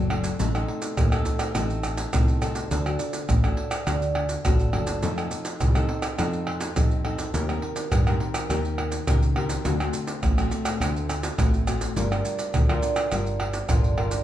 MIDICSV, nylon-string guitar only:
0, 0, Header, 1, 2, 480
1, 0, Start_track
1, 0, Tempo, 578035
1, 330, Time_signature, 4, 2, 24, 8
1, 11822, End_track
2, 0, Start_track
2, 0, Title_t, "Nylon-string guitar"
2, 0, Program_c, 0, 24
2, 0, Note_on_c, 0, 54, 62
2, 80, Note_on_c, 0, 60, 56
2, 84, Note_on_c, 0, 62, 59
2, 88, Note_on_c, 0, 69, 64
2, 305, Note_off_c, 0, 54, 0
2, 306, Note_off_c, 0, 60, 0
2, 308, Note_off_c, 0, 62, 0
2, 310, Note_off_c, 0, 69, 0
2, 325, Note_on_c, 0, 57, 56
2, 329, Note_on_c, 0, 60, 58
2, 333, Note_on_c, 0, 63, 50
2, 333, Note_on_c, 0, 69, 57
2, 401, Note_off_c, 0, 60, 0
2, 401, Note_off_c, 0, 63, 0
2, 404, Note_off_c, 0, 69, 0
2, 451, Note_on_c, 0, 60, 62
2, 454, Note_on_c, 0, 63, 58
2, 456, Note_on_c, 0, 69, 58
2, 785, Note_off_c, 0, 57, 0
2, 809, Note_on_c, 0, 57, 52
2, 893, Note_off_c, 0, 60, 0
2, 894, Note_off_c, 0, 63, 0
2, 896, Note_off_c, 0, 69, 0
2, 932, Note_on_c, 0, 60, 65
2, 936, Note_on_c, 0, 63, 58
2, 939, Note_on_c, 0, 69, 80
2, 1254, Note_off_c, 0, 60, 0
2, 1255, Note_off_c, 0, 63, 0
2, 1257, Note_off_c, 0, 69, 0
2, 1267, Note_off_c, 0, 57, 0
2, 1291, Note_on_c, 0, 57, 56
2, 1292, Note_on_c, 0, 60, 60
2, 1295, Note_on_c, 0, 63, 54
2, 1298, Note_on_c, 0, 69, 60
2, 1733, Note_off_c, 0, 60, 0
2, 1735, Note_off_c, 0, 63, 0
2, 1736, Note_off_c, 0, 69, 0
2, 1748, Note_off_c, 0, 57, 0
2, 1772, Note_on_c, 0, 57, 54
2, 1773, Note_on_c, 0, 60, 59
2, 1775, Note_on_c, 0, 63, 59
2, 1780, Note_on_c, 0, 69, 60
2, 1974, Note_off_c, 0, 60, 0
2, 1976, Note_off_c, 0, 63, 0
2, 1977, Note_off_c, 0, 69, 0
2, 2004, Note_on_c, 0, 60, 57
2, 2009, Note_on_c, 0, 63, 47
2, 2010, Note_on_c, 0, 69, 57
2, 2229, Note_off_c, 0, 57, 0
2, 2230, Note_off_c, 0, 60, 0
2, 2231, Note_off_c, 0, 63, 0
2, 2232, Note_off_c, 0, 69, 0
2, 2249, Note_on_c, 0, 50, 48
2, 2251, Note_on_c, 0, 62, 51
2, 2254, Note_on_c, 0, 66, 47
2, 2257, Note_on_c, 0, 69, 50
2, 2323, Note_off_c, 0, 62, 0
2, 2325, Note_off_c, 0, 66, 0
2, 2326, Note_off_c, 0, 69, 0
2, 2377, Note_on_c, 0, 62, 49
2, 2380, Note_on_c, 0, 66, 55
2, 2385, Note_on_c, 0, 69, 58
2, 2708, Note_off_c, 0, 50, 0
2, 2729, Note_on_c, 0, 45, 58
2, 2817, Note_off_c, 0, 62, 0
2, 2819, Note_off_c, 0, 66, 0
2, 2820, Note_off_c, 0, 69, 0
2, 2853, Note_on_c, 0, 62, 58
2, 2856, Note_on_c, 0, 66, 64
2, 2860, Note_on_c, 0, 69, 67
2, 3175, Note_off_c, 0, 62, 0
2, 3177, Note_off_c, 0, 66, 0
2, 3178, Note_off_c, 0, 69, 0
2, 3187, Note_off_c, 0, 45, 0
2, 3210, Note_on_c, 0, 50, 51
2, 3212, Note_on_c, 0, 62, 56
2, 3217, Note_on_c, 0, 66, 49
2, 3218, Note_on_c, 0, 69, 58
2, 3521, Note_off_c, 0, 62, 0
2, 3523, Note_off_c, 0, 66, 0
2, 3525, Note_off_c, 0, 69, 0
2, 3668, Note_off_c, 0, 50, 0
2, 3692, Note_on_c, 0, 45, 60
2, 3695, Note_on_c, 0, 62, 54
2, 3697, Note_on_c, 0, 66, 57
2, 3701, Note_on_c, 0, 69, 71
2, 3895, Note_off_c, 0, 62, 0
2, 3897, Note_off_c, 0, 66, 0
2, 3899, Note_off_c, 0, 69, 0
2, 3927, Note_on_c, 0, 62, 54
2, 3931, Note_on_c, 0, 66, 54
2, 3936, Note_on_c, 0, 69, 58
2, 4150, Note_off_c, 0, 45, 0
2, 4151, Note_off_c, 0, 62, 0
2, 4153, Note_off_c, 0, 66, 0
2, 4156, Note_off_c, 0, 69, 0
2, 4173, Note_on_c, 0, 53, 57
2, 4176, Note_on_c, 0, 60, 51
2, 4181, Note_on_c, 0, 63, 53
2, 4182, Note_on_c, 0, 69, 59
2, 4246, Note_off_c, 0, 60, 0
2, 4247, Note_off_c, 0, 63, 0
2, 4250, Note_off_c, 0, 69, 0
2, 4294, Note_on_c, 0, 60, 50
2, 4298, Note_on_c, 0, 63, 51
2, 4304, Note_on_c, 0, 69, 60
2, 4630, Note_off_c, 0, 53, 0
2, 4649, Note_on_c, 0, 48, 53
2, 4736, Note_off_c, 0, 60, 0
2, 4738, Note_off_c, 0, 63, 0
2, 4739, Note_off_c, 0, 69, 0
2, 4779, Note_on_c, 0, 60, 61
2, 4782, Note_on_c, 0, 63, 66
2, 4786, Note_on_c, 0, 69, 63
2, 5098, Note_off_c, 0, 60, 0
2, 5100, Note_off_c, 0, 63, 0
2, 5102, Note_off_c, 0, 69, 0
2, 5108, Note_off_c, 0, 48, 0
2, 5133, Note_on_c, 0, 53, 54
2, 5137, Note_on_c, 0, 60, 50
2, 5138, Note_on_c, 0, 63, 56
2, 5144, Note_on_c, 0, 69, 67
2, 5576, Note_off_c, 0, 60, 0
2, 5579, Note_off_c, 0, 63, 0
2, 5580, Note_off_c, 0, 69, 0
2, 5590, Note_off_c, 0, 53, 0
2, 5617, Note_on_c, 0, 48, 52
2, 5617, Note_on_c, 0, 60, 56
2, 5621, Note_on_c, 0, 63, 53
2, 5624, Note_on_c, 0, 69, 67
2, 5817, Note_off_c, 0, 60, 0
2, 5819, Note_off_c, 0, 63, 0
2, 5821, Note_off_c, 0, 69, 0
2, 5851, Note_on_c, 0, 60, 58
2, 5854, Note_on_c, 0, 63, 52
2, 5858, Note_on_c, 0, 69, 59
2, 6072, Note_off_c, 0, 48, 0
2, 6074, Note_off_c, 0, 60, 0
2, 6075, Note_off_c, 0, 63, 0
2, 6076, Note_off_c, 0, 69, 0
2, 6093, Note_on_c, 0, 51, 45
2, 6094, Note_on_c, 0, 60, 47
2, 6097, Note_on_c, 0, 67, 44
2, 6102, Note_on_c, 0, 70, 53
2, 6175, Note_off_c, 0, 60, 0
2, 6178, Note_off_c, 0, 67, 0
2, 6179, Note_off_c, 0, 70, 0
2, 6217, Note_on_c, 0, 60, 66
2, 6221, Note_on_c, 0, 67, 55
2, 6226, Note_on_c, 0, 70, 57
2, 6550, Note_off_c, 0, 51, 0
2, 6576, Note_on_c, 0, 51, 57
2, 6658, Note_off_c, 0, 60, 0
2, 6659, Note_off_c, 0, 67, 0
2, 6662, Note_off_c, 0, 70, 0
2, 6702, Note_on_c, 0, 60, 72
2, 6706, Note_on_c, 0, 67, 59
2, 6706, Note_on_c, 0, 70, 64
2, 7020, Note_off_c, 0, 60, 0
2, 7021, Note_off_c, 0, 67, 0
2, 7022, Note_off_c, 0, 70, 0
2, 7031, Note_off_c, 0, 51, 0
2, 7057, Note_on_c, 0, 51, 56
2, 7061, Note_on_c, 0, 60, 53
2, 7061, Note_on_c, 0, 67, 58
2, 7066, Note_on_c, 0, 70, 61
2, 7365, Note_off_c, 0, 60, 0
2, 7367, Note_off_c, 0, 67, 0
2, 7369, Note_off_c, 0, 70, 0
2, 7512, Note_off_c, 0, 51, 0
2, 7541, Note_on_c, 0, 51, 59
2, 7543, Note_on_c, 0, 60, 57
2, 7545, Note_on_c, 0, 67, 54
2, 7550, Note_on_c, 0, 70, 65
2, 7679, Note_off_c, 0, 60, 0
2, 7681, Note_off_c, 0, 67, 0
2, 7683, Note_off_c, 0, 70, 0
2, 7773, Note_on_c, 0, 60, 56
2, 7777, Note_on_c, 0, 67, 55
2, 7779, Note_on_c, 0, 70, 59
2, 7994, Note_off_c, 0, 51, 0
2, 7995, Note_off_c, 0, 60, 0
2, 7996, Note_off_c, 0, 67, 0
2, 7997, Note_off_c, 0, 70, 0
2, 8017, Note_on_c, 0, 50, 59
2, 8020, Note_on_c, 0, 57, 55
2, 8020, Note_on_c, 0, 60, 57
2, 8026, Note_on_c, 0, 66, 56
2, 8089, Note_off_c, 0, 57, 0
2, 8090, Note_off_c, 0, 60, 0
2, 8091, Note_off_c, 0, 66, 0
2, 8142, Note_on_c, 0, 57, 52
2, 8146, Note_on_c, 0, 60, 62
2, 8148, Note_on_c, 0, 66, 64
2, 8471, Note_off_c, 0, 50, 0
2, 8495, Note_on_c, 0, 45, 59
2, 8580, Note_off_c, 0, 57, 0
2, 8582, Note_off_c, 0, 60, 0
2, 8582, Note_off_c, 0, 66, 0
2, 8619, Note_on_c, 0, 57, 67
2, 8624, Note_on_c, 0, 60, 73
2, 8630, Note_on_c, 0, 66, 67
2, 8938, Note_off_c, 0, 57, 0
2, 8941, Note_off_c, 0, 60, 0
2, 8942, Note_off_c, 0, 66, 0
2, 8950, Note_off_c, 0, 45, 0
2, 8974, Note_on_c, 0, 50, 62
2, 8975, Note_on_c, 0, 57, 54
2, 8977, Note_on_c, 0, 60, 66
2, 8981, Note_on_c, 0, 66, 55
2, 9415, Note_off_c, 0, 57, 0
2, 9417, Note_off_c, 0, 60, 0
2, 9419, Note_off_c, 0, 66, 0
2, 9430, Note_off_c, 0, 50, 0
2, 9454, Note_on_c, 0, 45, 59
2, 9455, Note_on_c, 0, 57, 61
2, 9459, Note_on_c, 0, 60, 57
2, 9461, Note_on_c, 0, 66, 72
2, 9655, Note_off_c, 0, 57, 0
2, 9658, Note_off_c, 0, 60, 0
2, 9658, Note_off_c, 0, 66, 0
2, 9690, Note_on_c, 0, 57, 52
2, 9696, Note_on_c, 0, 66, 65
2, 9697, Note_on_c, 0, 60, 49
2, 9909, Note_off_c, 0, 45, 0
2, 9913, Note_off_c, 0, 57, 0
2, 9914, Note_off_c, 0, 60, 0
2, 9915, Note_off_c, 0, 66, 0
2, 9936, Note_on_c, 0, 55, 54
2, 9937, Note_on_c, 0, 62, 55
2, 9941, Note_on_c, 0, 65, 50
2, 9943, Note_on_c, 0, 70, 56
2, 10016, Note_off_c, 0, 62, 0
2, 10018, Note_off_c, 0, 65, 0
2, 10020, Note_off_c, 0, 70, 0
2, 10057, Note_on_c, 0, 62, 68
2, 10060, Note_on_c, 0, 65, 60
2, 10065, Note_on_c, 0, 70, 64
2, 10390, Note_off_c, 0, 55, 0
2, 10416, Note_on_c, 0, 50, 50
2, 10496, Note_off_c, 0, 62, 0
2, 10498, Note_off_c, 0, 65, 0
2, 10499, Note_off_c, 0, 70, 0
2, 10537, Note_on_c, 0, 62, 61
2, 10545, Note_on_c, 0, 65, 65
2, 10546, Note_on_c, 0, 70, 71
2, 10857, Note_off_c, 0, 62, 0
2, 10858, Note_off_c, 0, 65, 0
2, 10860, Note_off_c, 0, 70, 0
2, 10869, Note_off_c, 0, 50, 0
2, 10892, Note_on_c, 0, 55, 49
2, 10896, Note_on_c, 0, 62, 45
2, 10900, Note_on_c, 0, 70, 62
2, 10902, Note_on_c, 0, 65, 54
2, 11202, Note_off_c, 0, 62, 0
2, 11203, Note_off_c, 0, 65, 0
2, 11204, Note_off_c, 0, 70, 0
2, 11348, Note_off_c, 0, 55, 0
2, 11367, Note_on_c, 0, 50, 58
2, 11370, Note_on_c, 0, 62, 55
2, 11376, Note_on_c, 0, 65, 57
2, 11376, Note_on_c, 0, 70, 59
2, 11571, Note_off_c, 0, 62, 0
2, 11572, Note_off_c, 0, 65, 0
2, 11575, Note_off_c, 0, 70, 0
2, 11602, Note_on_c, 0, 62, 61
2, 11609, Note_on_c, 0, 70, 56
2, 11610, Note_on_c, 0, 65, 59
2, 11822, Note_off_c, 0, 50, 0
2, 11822, Note_off_c, 0, 62, 0
2, 11822, Note_off_c, 0, 65, 0
2, 11822, Note_off_c, 0, 70, 0
2, 11822, End_track
0, 0, End_of_file